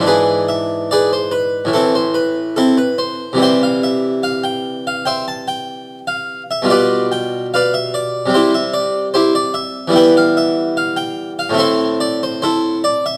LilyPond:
<<
  \new Staff \with { instrumentName = "Harpsichord" } { \time 4/4 \key c \major \tempo 4 = 73 <e' gis' b'>8 e''8 <gis' b' d''>16 c''16 b'8 <c' e' a'>16 c''16 b'8 <c' e' a'>16 b'16 c''8 | <c'' e'' g''>16 f''16 e''8 f''16 g''8 f''16 <c'' e'' g''>16 a''16 g''8. f''8 e''16 | <g' b' d''>8 g''8 <b' d'' f''>16 e''16 d''8 <e' g' c''>16 e''16 d''8 <e' g' c''>16 d''16 e''8 | \key e \phrygian <b' e'' g''>16 f''16 e''8 f''16 g''8 f''16 <a' c'' e''>8 d''16 c''16 <e' a' c''>8 d''16 e''16 | }
  \new Staff \with { instrumentName = "Harpsichord" } { \clef bass \time 4/4 \key c \major <gis, e d'>2 <a, e>2 | <c e g e'>1 | <b, g f'>2 <c g c'>2 | \key e \phrygian <e g b e'>2 <a, a c' e'>2 | }
>>